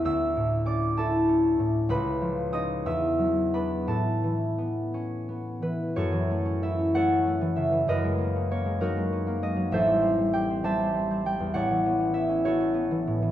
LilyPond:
<<
  \new Staff \with { instrumentName = "Harp" } { \time 6/8 \key a \major \tempo 4. = 65 << { <cis''' e''' fis'''>4 d'''8 a''4. | b''4 dis'''8 e'''4 b''8 | a''2~ a''8 b'8 | \key fis \minor cis''4 e''8 fis''4 e''8 |
dis''4 cis''8 ais'4 dis''8 | e''4 g''8 a''4 g''8 | fis''4 e''8 cis''4. | } \\ { <cis'' e'' fis''>4 d''8 a'4. | b'4 dis''8 e''4 b'8 | a'2. | <fis' a'>4. <a' cis''>4. |
<ais' b'>4. <dis' fis'>4. | <a' c''>4. <c'' e''>4. | <cis'' d''>4. <fis' a'>4. | } >> }
  \new Staff \with { instrumentName = "Harp" } { \time 6/8 \key a \major <d, cis' e'>8 a,8 cis'8 e'8 cis'8 a,8 | cis,8 eis8 <cis' dis'>8 e,8 fis8 <b d'>8 | a,8 e8 b8 cis'8 b8 e8 | \key fis \minor fis,16 e16 a16 cis'16 e'16 cis'16 a16 cis'16 a16 e16 cis16 e16 |
fis,16 gis16 ais16 cis'16 ais16 gis16 fis16 gis16 cis'16 ais16 gis16 fis16 | a,,16 g16 c'16 g16 g'16 c'16 g16 c'16 g16 c'16 g16 e,16 | a,,16 e16 b16 cis'16 e'16 cis'16 b16 cis'16 b16 e16 a,16 e16 | }
>>